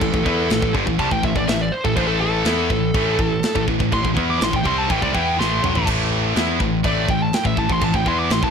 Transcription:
Already playing: lead electric guitar A4
0.01 picked electric bass A1, distorted electric guitar A2 E3, kick, china
0.14 picked electric bass A1, distorted electric guitar A2 E3, kick
0.26 picked electric bass E2, distorted electric guitar E3 B3 E4, kick
0.50 picked electric bass A1, distorted electric guitar A2 E3, snare, china
0.62 picked electric bass A1, distorted electric guitar A2 E3, kick
0.74 picked electric bass G1, distorted electric guitar G2 D3, kick
0.86 picked electric bass A1, distorted electric guitar A2 E3, kick
0.99 picked electric bass C2, distorted electric guitar C3 G3, lead electric guitar A5, kick, china
1.11 picked electric bass A1, distorted electric guitar A2 E3, lead electric guitar G5, kick
1.23 picked electric bass A1, distorted electric guitar A2 E3, lead electric guitar E5, kick
1.36 picked electric bass A1, distorted electric guitar A2 E3, lead electric guitar D5, kick
1.48 picked electric bass A1, distorted electric guitar A2 E3, lead electric guitar E5, snare, china
1.61 lead electric guitar D5
1.72 lead electric guitar C5
1.84 picked electric bass A1, distorted electric guitar A2 E3, lead electric guitar A4, kick
1.96 picked electric bass A1, distorted electric guitar A2 E3 A3, lead electric guitar C5, kick, china
2.08 lead electric guitar A4
2.21 lead electric guitar A4
2.45 picked electric bass E2, distorted electric guitar E3 B3 E4, snare, china
2.70 picked electric bass A1, distorted electric guitar A2 E3, kick
2.94 picked electric bass A1, distorted electric guitar A2 E3 A3, kick, china
3.19 picked electric bass A1, distorted electric guitar A2 E3, kick
3.43 snare, china
3.55 picked electric bass A1, distorted electric guitar A2 E3, kick
3.68 picked electric bass A1, distorted electric guitar A2 E3, kick
3.79 picked electric bass A1, distorted electric guitar A2 E3, kick
3.92 picked electric bass A1, distorted electric guitar A2 E3, lead electric guitar C6, kick, china
4.03 picked electric bass A1, distorted electric guitar A2 E3, kick
4.15 picked electric bass E2, distorted electric guitar E3 B3 E4, kick
4.30 lead electric guitar D6
4.39 picked electric bass A1, distorted electric guitar A2 E3, snare, china
4.44 lead electric guitar C6
4.51 picked electric bass A1, distorted electric guitar A2 E3, kick
4.56 lead electric guitar G5
4.64 picked electric bass C2, distorted electric guitar C3 G3 C4, lead electric guitar C6, kick
4.78 lead electric guitar A5
4.88 picked electric bass A1, distorted electric guitar A2 E3, lead electric guitar G5, kick, china
5.00 picked electric bass C2, distorted electric guitar C3 G3, lead electric guitar D5, kick
5.12 picked electric bass E2, distorted electric guitar E3 B3 E4, lead electric guitar G5, kick
5.37 picked electric bass A1, distorted electric guitar A2 E3 A3, lead electric guitar C6, snare
5.62 picked electric bass B1, distorted electric guitar B2 F#3, mid tom
5.74 picked electric bass A1, distorted electric guitar A2 E3, floor tom
5.86 picked electric bass A1, distorted electric guitar A2 E3 A3, kick, china, crash
6.35 picked electric bass E2, distorted electric guitar E3 B3 E4, snare, china
6.60 picked electric bass A1, distorted electric guitar A2 E3, kick
6.84 picked electric bass A1, distorted electric guitar A2 E3 A3, lead electric guitar D5, kick, china
7.08 picked electric bass A1, distorted electric guitar A2 E3, lead electric guitar G5, kick
7.22 lead electric guitar A5
7.33 lead electric guitar G5, snare, china
7.45 picked electric bass A1, distorted electric guitar A2 E3, lead electric guitar E5, kick
7.57 picked electric bass A1, distorted electric guitar A2 E3, lead electric guitar A5, kick
7.70 picked electric bass A1, distorted electric guitar A2 E3, lead electric guitar C6, kick
7.82 picked electric bass A1, distorted electric guitar A2 E3, lead electric guitar A5, kick, china
7.94 picked electric bass A1, distorted electric guitar A2 E3, lead electric guitar G5, kick
8.06 picked electric bass E2, distorted electric guitar E3 B3 E4, lead electric guitar C6, kick
8.19 lead electric guitar D6
8.30 picked electric bass A1, distorted electric guitar A2 E3, lead electric guitar C6, snare, china
8.43 picked electric bass A1, distorted electric guitar A2 E3, lead electric guitar A5, kick

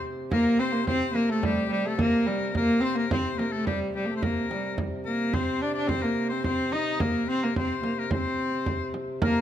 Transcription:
Already playing: harmonium C3
0.04 frame drum
0.31 harmonium C3, viola da gamba A#3, shawm A#4, frame drum
0.59 viola da gamba C4, shawm C5
0.72 viola da gamba A#3
0.87 viola da gamba C4, shawm C5, frame drum
1.14 viola da gamba A#3, shawm A#4, frame drum
1.29 viola da gamba A3, shawm A4
1.43 viola da gamba G3, shawm G4, frame drum
1.70 viola da gamba G3, shawm G4
1.86 viola da gamba A3, shawm A4
1.98 viola da gamba A#3, shawm A#4, frame drum
2.26 viola da gamba G3, frame drum
2.55 viola da gamba A#3, shawm A#4, frame drum
2.80 viola da gamba C4
2.84 shawm C5
2.95 viola da gamba A#3, shawm A#4
3.10 viola da gamba C4, shawm C5, frame drum
3.38 viola da gamba A#3, shawm A#4, frame drum
3.52 viola da gamba A3, shawm A4
3.66 viola da gamba G3, shawm G4, frame drum
3.95 viola da gamba G3, shawm G4, frame drum
4.06 viola da gamba A#3
4.11 viola da gamba A3
4.16 shawm C5
4.23 viola da gamba A#3, shawm A#4, frame drum
4.51 viola da gamba G3, frame drum
4.78 harmonium C3, frame drum
5.05 viola da gamba A#3, shawm A#4
5.33 viola da gamba C4, shawm C5, frame drum
5.62 viola da gamba D4, shawm D5
5.74 viola da gamba D4, shawm D5
5.87 viola da gamba C4, shawm C5, frame drum
6.02 viola da gamba A#3, shawm A#4
6.29 viola da gamba C4, shawm C5
6.44 viola da gamba C4, shawm C5, frame drum
6.72 viola da gamba D#4, shawm D#5, frame drum
7.00 viola da gamba A#3, shawm A#4, frame drum
7.29 viola da gamba C4, shawm C5
7.42 viola da gamba A#3, shawm A#4
7.56 viola da gamba C4, shawm C5, frame drum
7.83 viola da gamba A#3, frame drum
7.98 viola da gamba A#3, shawm A#4
8.11 viola da gamba C4, shawm C5, frame drum
8.38 frame drum
8.66 frame drum
8.94 frame drum
9.22 harmonium C3, viola da gamba A#3, hammered dulcimer A#4, shawm A#4, frame drum

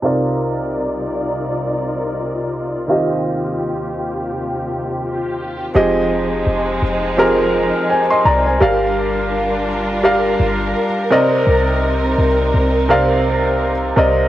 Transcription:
0.02 string section C2 C3 D#4 F4 A#4 D5, grand piano C3 C4 D#4 F4 A#4 D5
2.88 string section D#2 C3 G4, grand piano D#3 C4 F4 G4 D#5
5.75 808-style bass F1, grand piano F3 C4 G4 G#4 D#5, string section F3 G#3 C4 D#4
6.47 808-style bass F1
6.82 808-style bass F1
7.17 grand piano F3 C4 G4 G#4 A#4
7.90 grand piano C5 G#5
8.11 grand piano D#5 C6
8.25 808-style bass C2, grand piano D5 A#5
8.46 grand piano C5 G#5
8.60 808-style bass G1, grand piano G3 G4 A#4 D5 F5, string section G3 D4 F4 A#4
10.03 grand piano G3 G4 A#4 D5 F5
10.40 808-style bass G1
11.10 grand piano C3 C4 A#4 D5 D#5, string section C3 C4 D#4
11.47 808-style bass C2
12.18 808-style bass C2
12.54 808-style bass C2
12.89 grand piano C3 C4 A#4 D5 F5
13.96 808-style bass C2, grand piano C3 C4 A#4 D5 D#5

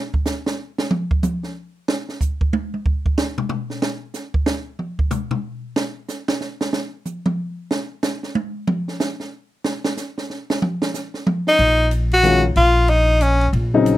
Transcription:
0.14 kick
0.26 snare, hi-hat pedal
0.46 snare
0.78 snare
0.91 mid tom
1.11 kick
1.23 hi-hat pedal, mid tom
1.43 snare
1.88 snare
2.09 snare
2.21 kick, hi-hat pedal
2.41 kick
2.53 high tom
2.74 high tom
2.86 kick
3.06 kick
3.18 snare, hi-hat pedal
3.38 floor tom
3.49 floor tom
3.70 snare
3.82 snare
4.14 snare, hi-hat pedal
4.34 kick
4.46 snare
4.79 mid tom
4.99 kick
5.11 floor tom, hi-hat pedal
5.31 floor tom
5.76 snare
6.08 snare, hi-hat pedal
6.28 snare
6.41 snare
6.61 snare
6.73 snare
7.05 hi-hat pedal, mid tom
7.26 mid tom
7.71 snare
8.03 snare, hi-hat pedal
8.23 snare
8.35 high tom
8.67 mid tom
8.88 snare
9.00 snare, hi-hat pedal
9.20 snare
9.64 snare
9.84 snare
9.97 snare, hi-hat pedal
10.18 snare
10.30 snare
10.50 snare
10.62 mid tom
10.82 snare
10.94 snare, hi-hat pedal
11.14 snare
11.27 mid tom
11.47 tenor saxophone D#4, snare
11.59 upright bass A#1, ride
11.91 hi-hat pedal, ride
12.11 tenor saxophone F#4, ride
12.23 grand piano D#3 G#3 C#4 F4, hi-hat pedal, ride
12.56 upright bass A#1, tenor saxophone F4, ride
12.88 tenor saxophone D#4, ride
13.21 tenor saxophone C#4, hi-hat pedal, ride
13.41 ride
13.53 upright bass A#1, ride
13.74 grand piano C#3 F#3 C4 D#4
13.86 hi-hat pedal, ride

